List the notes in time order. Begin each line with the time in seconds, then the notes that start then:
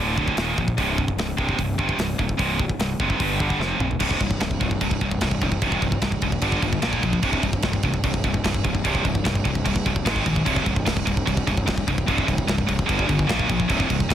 Already playing: D1 D2 A2 D3
0.16 D2 A2 D3, kick
0.28 kick
0.37 D#1 D#2 A#2 D#3, snare, open hi-hat
0.57 A#1 D#2 A#2, kick
0.68 kick
0.77 C1 C2 G2 C3, kick, open hi-hat
0.98 C2 G2, kick
1.08 kick
1.17 C1 C2 G2, snare, open hi-hat
1.37 C1 C2 G2 C3, kick
1.49 kick
1.58 C1 C2 G2, kick, open hi-hat
1.78 G1 C2 G2 C3, kick
1.89 kick
1.97 C1 C2 G2, snare, open hi-hat
2.18 D#1 C2 G2, kick
2.29 kick
2.37 C1 C2 G2 C3, kick, open hi-hat
2.58 C2 G2, kick
2.69 kick
2.79 C1 C2 G2, snare, open hi-hat
3.00 F#1 C2 G2 C3, kick
3.10 kick
3.20 G1 G2 D3 G3, kick, open hi-hat
3.40 G2 D3 G3, kick
3.50 kick
3.59 F1 F2 C3 F3, snare
3.79 A#1 F2 C3, mid tom
3.91 floor tom
4.00 C1 C2 G2 C3, kick, crash
4.11 kick
4.20 C1 C2 G2, kick, crash
4.31 kick
4.40 C1 C2 G2, kick, snare, crash
4.51 kick
4.60 C1 C2 G2, kick, crash
4.71 kick
4.81 C1 C2 G2, kick, crash
4.91 kick
5.01 C1 C2 G2, kick, crash
5.11 kick
5.21 C1 C2 G2, kick, snare, crash
5.31 kick
5.41 C1 C2 G2, kick, crash
5.52 kick
5.62 C1 C2 G2 C3, kick, crash
5.72 kick
5.82 C1 C2 G2, kick, crash
5.92 kick
6.02 C1 C2 G2, kick, snare, crash
6.12 kick
6.22 C1 C2 G2, kick, crash
6.32 kick
6.42 G1 G2 D3 G3, kick, crash
6.52 kick
6.62 G1 G2 D3, kick, crash
6.73 kick
6.82 A#1 A#2 F3 A#3, kick, snare, crash
6.93 kick
7.03 A#1 A#2 F3, kick, crash
7.13 kick
7.23 C1 C2 G2 C3, kick, crash
7.33 kick
7.43 C1 C2 G2, kick, crash
7.53 kick
7.62 C1 C2 G2, kick, snare, crash
7.73 kick
7.83 C1 C2 G2, kick, crash
7.94 kick
8.03 C1 C2 G2, kick, crash
8.14 kick
8.24 C1 C2 G2, kick, crash
8.34 kick
8.44 C1 C2 G2, kick, snare, crash
8.54 kick
8.64 C1 C2 G2, kick, crash
8.75 kick
8.84 C1 C2 G2 C3, kick, crash
8.95 kick
9.03 C1 C2 G2, kick, crash
9.15 kick
9.24 C1 C2 G2, kick, snare, crash
9.35 kick
9.45 C1 C2 G2, kick, crash
9.55 kick
9.65 C1 C2 G2, kick, crash
9.76 kick
9.86 C1 C2 G2, kick, crash
9.96 kick
10.05 G#1 G#2 D#3 G#3, kick, snare, crash
10.16 kick
10.25 A#1 G#2 D#3, kick, crash
10.36 kick
10.45 C1 C2 G2 C3, kick, crash
10.56 kick
10.66 C1 C2 G2, kick, crash
10.76 kick
10.86 C1 C2 G2, kick, snare, crash
10.97 kick
11.06 C1 C2 G2, kick, crash
11.17 kick
11.26 C1 C2 G2, kick, crash
11.37 kick
11.47 C1 C2 G2, kick, crash
11.57 kick
11.66 C1 C2 G2, kick, snare, crash
11.78 kick
11.87 C1 C2 G2, kick, crash
11.98 kick
12.07 C1 C2 G2 C3, kick, crash
12.18 kick
12.27 C1 C2 G2, kick, crash
12.38 kick
12.47 C1 C2 G2, kick, snare, crash
12.58 kick
12.67 C1 C2 G2, kick, crash
12.79 kick
12.86 G1 G2 D3 G3, kick, crash
12.99 kick
13.07 G1 G2 D3, kick, crash
13.19 kick
13.27 A#1 A#2 F3 A#3, kick, snare, crash
13.39 kick
13.48 A#1 A#2 F3, kick, crash
13.60 kick
13.68 C1 C2 G2 C3, kick, crash
13.80 kick
13.88 C1 C2 G2, kick, crash
14.00 kick
14.09 C1 C2 G2, kick, crash